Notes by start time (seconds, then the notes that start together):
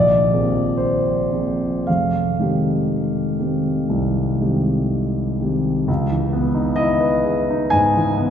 Already playing: A#1 D5
0.34 F3 A#3 C4 G#4
0.77 C5
1.32 F3 A#3 C4 G#4
1.87 F1 F5
2.39 D#3 G#3 C4 G4
3.39 D#3 G#3 C4 G4
3.89 C2
4.40 D#3 G#3 C4 G4
5.41 D#3 G#3 C4 G4
5.88 C#2
6.12 E3
6.33 B3
6.54 D#4
6.76 E4 D#5
7.00 B4
7.25 G#4
7.50 D#4
7.70 G#2 G#5
7.96 E3
8.17 B3